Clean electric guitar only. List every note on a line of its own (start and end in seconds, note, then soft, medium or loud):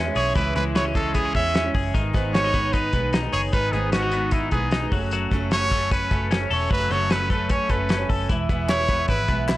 0.00 0.34 E3 medium
0.00 0.55 G#3 medium
0.00 0.75 C#4 medium
0.16 1.74 G#4 medium
0.35 1.94 E3 medium
0.55 0.95 G#3 medium
0.75 0.85 B3 medium
0.85 1.15 C#4 soft
0.95 1.34 G#3 medium
1.15 1.25 B3 medium
1.25 1.54 C#4 medium
1.35 2.14 G#3 medium
1.55 1.98 C#4 medium
1.75 3.33 G#4 medium
1.94 3.52 D#3 medium
2.14 2.53 B3 medium
2.34 2.44 C#4 medium
2.44 2.73 D#4 soft
2.54 2.92 B3 medium
2.74 3.12 D#4 medium
2.94 3.72 B3 medium
3.13 3.92 D#4 medium
3.33 4.92 G#4 medium
3.53 4.92 D#3 medium
3.73 4.12 B3 medium
3.93 4.02 C#4 medium
4.02 4.31 D#4 medium
4.13 4.51 B3 medium
4.32 4.71 D#4 medium
4.52 4.96 B3 medium
4.72 4.96 D#4 medium
4.92 5.11 F#3 medium
5.13 6.69 F#3 medium
5.32 5.70 A3 medium
5.52 5.90 C#4 medium
5.72 6.10 A3 medium
5.91 6.29 C#4 medium
6.11 6.89 A3 medium
6.31 7.09 C#4 medium
6.50 8.08 A4 medium
6.70 8.29 F#3 medium
6.91 7.29 A3 medium
7.10 7.49 C#4 medium
7.30 7.69 A3 medium
7.50 7.89 C#4 medium
7.70 8.34 A3 medium
7.90 8.34 C#4 medium
8.09 8.33 A4 medium
8.29 9.57 E3 medium
8.50 8.88 B3 medium
8.69 9.08 E4 medium
8.89 9.27 B3 medium
9.09 9.47 E4 medium
9.28 9.57 B3 medium
9.48 9.57 E4 medium